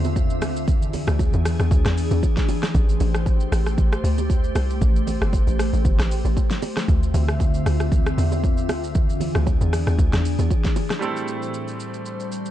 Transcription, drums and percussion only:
0.04 low bongo, shaker
0.16 kick, high bongo, shaker
0.30 shaker
0.42 cross-stick, open hi-hat, high bongo, low bongo, shaker
0.56 shaker
0.68 kick, low conga, shaker
0.82 shaker
0.93 open hi-hat, low bongo, low conga, shaker
1.07 cross-stick, low bongo, shaker
1.19 kick, high bongo, shaker
1.33 shaker
1.45 cross-stick, open hi-hat, shaker
1.60 cross-stick, shaker
1.71 kick, low conga, shaker
1.86 cross-stick, snare, shaker
1.98 open hi-hat, shaker
2.11 low bongo, shaker
2.23 kick, high bongo, shaker
2.37 kick, snare, shaker
2.49 open hi-hat, high bongo, low bongo, shaker
2.63 cross-stick, snare, shaker
2.75 kick, low conga, shaker
2.89 shaker
3.00 open hi-hat, low bongo, low conga, shaker
3.14 cross-stick, shaker
3.26 kick, high bongo, shaker
3.40 shaker
3.52 cross-stick, open hi-hat, shaker
3.66 cross-stick, shaker
3.78 kick, low conga, shaker
3.92 cross-stick, shaker
4.05 open hi-hat, shaker
4.18 low bongo, shaker
4.30 kick, high bongo, shaker
4.44 shaker
4.55 cross-stick, open hi-hat, high bongo, low bongo, shaker
4.70 shaker
4.81 kick, low conga, shaker
4.96 shaker
5.07 open hi-hat, low bongo, low conga, shaker
5.22 cross-stick, shaker
5.33 kick, high bongo, shaker
5.47 shaker
5.59 cross-stick, open hi-hat, shaker
5.73 shaker
5.85 kick, low conga, shaker
5.99 cross-stick, snare, shaker
6.11 open hi-hat, shaker
6.25 low bongo, shaker
6.37 kick, high bongo, shaker
6.51 snare, shaker
6.62 open hi-hat, high bongo, low bongo, shaker
6.77 cross-stick, snare, shaker
6.88 kick, low conga, shaker
7.03 shaker
7.14 open hi-hat, low bongo, low conga, shaker
7.28 cross-stick, shaker
7.40 kick, high bongo, shaker
7.54 shaker
7.66 cross-stick, open hi-hat, shaker
7.80 cross-stick, shaker
7.92 kick, low conga, shaker
8.06 cross-stick, shaker
8.18 open hi-hat, shaker
8.32 low bongo, shaker
8.44 kick, high bongo, shaker
8.58 shaker
8.69 cross-stick, open hi-hat, high bongo, low bongo, shaker
8.84 shaker
8.95 kick, low conga, shaker
9.09 shaker
9.20 open hi-hat, high bongo, low bongo, low conga, shaker
9.35 cross-stick, shaker
9.46 kick, high bongo, shaker
9.61 shaker
9.73 cross-stick, open hi-hat, shaker
9.87 cross-stick, shaker
9.99 kick, low conga, shaker
10.13 cross-stick, snare, shaker
10.25 open hi-hat, shaker
10.39 low bongo, shaker
10.51 kick, high bongo, shaker
10.64 kick, snare, shaker
10.76 open hi-hat, high bongo, low bongo, shaker
10.90 cross-stick, snare, shaker
11.02 shaker
11.17 shaker
11.28 shaker
11.42 shaker
11.54 shaker
11.68 shaker
11.80 shaker
11.94 shaker
12.06 shaker
12.20 shaker
12.32 shaker
12.46 shaker

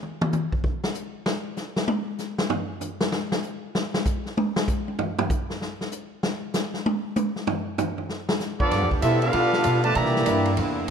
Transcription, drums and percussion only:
0.03 mid tom
0.21 mid tom
0.33 hi-hat pedal, mid tom
0.52 kick
0.64 kick
0.84 snare
0.95 hi-hat pedal
1.26 snare
1.57 snare, hi-hat pedal
1.76 snare
1.88 high tom
2.18 snare, hi-hat pedal
2.38 snare
2.50 floor tom
2.81 floor tom, hi-hat pedal
3.01 snare
3.12 snare
3.32 snare
3.43 hi-hat pedal
3.75 snare
3.94 snare
4.05 kick, hi-hat pedal
4.26 snare
4.37 high tom
4.56 snare
4.68 kick, hi-hat pedal
4.88 high tom
4.99 floor tom
5.19 floor tom
5.30 kick, hi-hat pedal
5.50 snare
5.61 snare
5.81 snare
5.92 hi-hat pedal
6.23 snare
6.54 snare, hi-hat pedal
6.74 snare
6.86 high tom
7.16 hi-hat pedal, high tom
7.36 snare
7.47 floor tom
7.78 floor tom, hi-hat pedal
7.98 floor tom
8.09 snare
8.29 snare
8.40 snare, hi-hat pedal
8.60 kick
8.71 kick, snare, ride
8.91 kick
9.02 kick, hi-hat pedal, ride
9.22 ride
9.33 kick, ride
9.53 snare
9.64 kick, hi-hat pedal, ride
9.84 ride
9.95 kick, ride
10.05 snare
10.16 snare
10.26 kick, hi-hat pedal, ride
10.45 ride
10.57 kick, ride

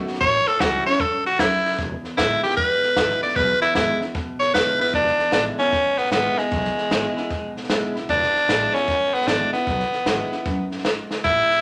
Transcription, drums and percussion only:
0.07 snare
0.14 snare
0.21 kick, snare
0.47 snare
0.60 kick, snare, hi-hat pedal
0.86 snare
0.93 snare
1.00 kick, snare
1.26 snare
1.39 kick, snare, hi-hat pedal
1.65 snare
1.72 snare
1.79 kick, snare
2.04 snare
2.18 kick, snare, hi-hat pedal
2.43 snare
2.50 snare
2.57 kick, snare
2.83 snare
2.96 kick, snare, hi-hat pedal
3.22 snare
3.29 snare
3.36 kick, snare
3.61 snare
3.75 kick, snare, hi-hat pedal
4.01 snare
4.15 kick, snare
4.41 snare
4.54 kick, snare, hi-hat pedal
4.80 snare
4.87 snare
4.94 kick, snare
5.06 snare
5.19 snare
5.32 snare, hi-hat pedal
5.59 snare
5.72 kick, snare
5.98 snare
6.05 snare
6.12 snare, hi-hat pedal
6.38 snare
6.52 kick, snare
6.65 snare
6.78 snare
6.91 snare, hi-hat pedal
7.17 snare
7.31 kick, snare
7.57 snare
7.64 snare
7.70 snare, hi-hat pedal
7.96 snare
8.09 kick, snare
8.23 snare
8.36 snare
8.49 snare, hi-hat pedal
8.75 snare
8.88 kick, snare
9.14 snare
9.21 snare
9.28 snare, hi-hat pedal
9.54 snare
9.67 kick, snare
9.80 snare
9.93 snare
10.06 snare, hi-hat pedal
10.32 snare
10.45 kick, snare
10.71 snare
10.78 snare
10.85 snare, hi-hat pedal
11.11 snare
11.24 kick, snare
11.50 snare

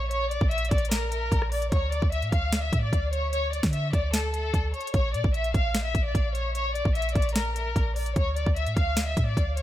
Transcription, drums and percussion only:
0.11 closed hi-hat
0.31 closed hi-hat
0.41 kick
0.51 closed hi-hat
0.58 closed hi-hat
0.65 closed hi-hat
0.71 kick, closed hi-hat
0.78 closed hi-hat
0.85 closed hi-hat
0.91 snare, closed hi-hat
1.12 closed hi-hat
1.32 kick, closed hi-hat
1.42 cross-stick
1.52 closed hi-hat, open hi-hat
1.62 closed hi-hat
1.72 kick, closed hi-hat
1.92 closed hi-hat
2.02 kick
2.12 closed hi-hat
2.22 closed hi-hat
2.32 kick, closed hi-hat
2.52 snare, closed hi-hat
2.73 kick, closed hi-hat
2.93 kick, closed hi-hat
3.13 closed hi-hat
3.33 closed hi-hat
3.53 closed hi-hat
3.63 kick, snare
3.73 closed hi-hat
3.93 kick, closed hi-hat
4.13 snare, closed hi-hat
4.34 closed hi-hat
4.54 kick, closed hi-hat
4.74 closed hi-hat
4.81 closed hi-hat
4.87 closed hi-hat
4.94 kick, closed hi-hat
5.14 closed hi-hat
5.24 kick
5.34 closed hi-hat
5.44 closed hi-hat
5.54 kick, closed hi-hat
5.74 snare, closed hi-hat
5.95 kick, closed hi-hat
6.15 kick, closed hi-hat
6.35 closed hi-hat
6.55 closed hi-hat
6.75 closed hi-hat
6.85 kick
6.95 closed hi-hat
7.02 closed hi-hat
7.09 closed hi-hat
7.15 kick, closed hi-hat
7.22 closed hi-hat
7.29 closed hi-hat
7.36 snare, closed hi-hat
7.56 closed hi-hat
7.76 kick, closed hi-hat
7.96 closed hi-hat, open hi-hat
8.06 closed hi-hat
8.16 kick, closed hi-hat
8.37 closed hi-hat
8.46 kick
8.56 closed hi-hat
8.67 closed hi-hat
8.77 kick, closed hi-hat
8.97 snare, closed hi-hat
9.17 kick, closed hi-hat
9.37 kick, closed hi-hat
9.57 closed hi-hat

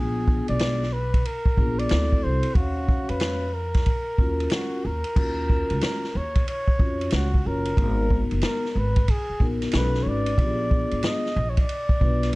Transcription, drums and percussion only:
0.28 kick
0.48 ride
0.59 snare, hi-hat pedal, ride
0.83 snare
1.14 kick, ride
1.25 ride
1.46 kick
1.57 kick
1.79 ride
1.89 snare, hi-hat pedal, ride
2.12 kick
2.43 ride
2.55 kick, ride
2.89 kick
3.09 ride
3.20 snare, hi-hat pedal, ride
3.74 kick, snare, ride
3.86 kick, ride
4.18 kick
4.40 ride
4.50 snare, hi-hat pedal, ride
5.04 ride
5.16 kick, crash
5.50 kick
5.70 ride
5.81 snare, hi-hat pedal, ride
6.04 snare
6.35 kick, ride
6.48 ride
6.68 kick
6.79 kick
7.01 ride
7.10 snare, hi-hat pedal, ride
7.34 kick
7.65 ride
7.77 kick, ride
8.10 kick
8.31 ride
8.41 snare, hi-hat pedal, ride
8.65 snare
8.96 kick, ride
9.08 kick, ride
9.40 kick
9.62 snare, ride
9.72 snare, hi-hat pedal, ride
9.94 snare
10.26 ride
10.38 kick, ride
10.71 kick
10.91 ride
11.03 snare, hi-hat pedal, ride
11.26 snare
11.57 kick, ride
11.69 ride
11.89 kick
12.01 kick
12.23 snare, ride

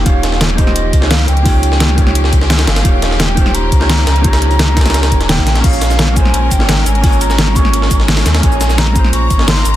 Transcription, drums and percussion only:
0.06 kick, closed hi-hat
0.23 snare, closed hi-hat
0.32 snare
0.41 snare, closed hi-hat
0.50 snare
0.58 kick, closed hi-hat
0.67 snare
0.76 closed hi-hat
0.93 kick, closed hi-hat
1.02 snare
1.11 snare, closed hi-hat
1.28 closed hi-hat
1.37 closed hi-hat
1.46 kick, closed hi-hat, open hi-hat
1.63 closed hi-hat
1.72 snare
1.80 snare, closed hi-hat
1.89 snare
1.98 kick, closed hi-hat
2.07 snare
2.15 closed hi-hat
2.24 snare
2.33 kick, closed hi-hat
2.41 snare
2.50 snare, closed hi-hat
2.59 snare, closed hi-hat
2.67 snare, closed hi-hat
2.76 snare, closed hi-hat
2.85 kick, closed hi-hat
3.02 snare, closed hi-hat
3.11 snare
3.20 snare, closed hi-hat
3.29 snare
3.37 kick, closed hi-hat
3.46 snare
3.55 closed hi-hat
3.72 kick, closed hi-hat
3.81 snare
3.90 snare, closed hi-hat
4.07 snare, closed hi-hat
4.16 closed hi-hat
4.24 kick, closed hi-hat
4.33 snare, closed hi-hat
4.42 closed hi-hat
4.51 closed hi-hat
4.59 snare, closed hi-hat
4.68 snare
4.77 kick, snare, closed hi-hat
4.81 snare, closed hi-hat
4.86 snare, closed hi-hat
4.90 snare, closed hi-hat
4.94 snare, closed hi-hat
5.03 snare, closed hi-hat
5.12 kick, closed hi-hat
5.21 snare, closed hi-hat
5.29 snare, closed hi-hat
5.38 kick
5.47 snare, closed hi-hat
5.55 snare, closed hi-hat
5.64 kick, closed hi-hat, crash
5.73 shaker
5.81 snare, closed hi-hat, shaker
5.90 snare, shaker
5.99 snare, closed hi-hat
6.08 snare
6.16 kick, closed hi-hat, shaker
6.25 snare
6.34 closed hi-hat
6.51 kick, closed hi-hat, shaker
6.60 snare
6.69 snare, closed hi-hat
6.86 closed hi-hat, shaker
6.95 closed hi-hat
7.04 kick, closed hi-hat, open hi-hat
7.13 shaker
7.21 closed hi-hat, shaker
7.30 snare, shaker
7.38 snare, closed hi-hat
7.47 snare
7.56 kick, closed hi-hat, shaker
7.65 snare
7.73 closed hi-hat
7.82 snare
7.91 kick, closed hi-hat, shaker
8.00 snare
8.08 snare, closed hi-hat
8.17 snare, closed hi-hat
8.26 snare, closed hi-hat, shaker
8.35 snare, closed hi-hat
8.43 kick, closed hi-hat
8.52 shaker
8.61 snare, closed hi-hat, shaker
8.69 snare, shaker
8.78 snare, closed hi-hat
8.87 snare
8.95 kick, closed hi-hat, shaker
9.04 snare
9.13 closed hi-hat
9.30 kick, closed hi-hat, shaker
9.39 snare
9.48 snare, closed hi-hat
9.65 closed hi-hat, shaker

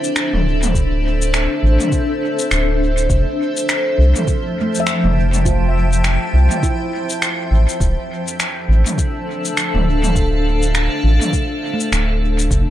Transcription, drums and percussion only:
0.04 cabasa
0.16 finger snap, cabasa
0.33 mid tom
0.63 mid tom, cabasa
0.74 kick, cabasa
1.22 cabasa
1.34 finger snap, cabasa
1.80 mid tom, cabasa
1.92 kick, cabasa
2.39 cabasa
2.51 finger snap, cabasa
2.98 cabasa
3.10 kick, cabasa
3.57 cabasa
3.69 finger snap, cabasa
4.16 mid tom, cabasa
4.27 kick, cabasa
4.75 cabasa
4.87 finger snap, cabasa
5.04 mid tom
5.34 mid tom, cabasa
5.45 kick, cabasa
5.93 cabasa
6.04 finger snap, cabasa
6.51 mid tom, cabasa
6.63 kick, cabasa
7.10 cabasa
7.22 finger snap, cabasa
7.69 cabasa
7.80 kick, cabasa
8.28 cabasa
8.40 finger snap, cabasa
8.87 mid tom, cabasa
8.98 kick, cabasa
9.45 cabasa
9.57 finger snap, cabasa
9.75 mid tom
10.04 mid tom, cabasa
10.15 kick, cabasa
10.63 cabasa
10.75 finger snap, cabasa
11.22 mid tom, cabasa
11.33 kick, cabasa
11.80 cabasa
11.93 finger snap, cabasa
12.39 cabasa
12.51 kick, cabasa

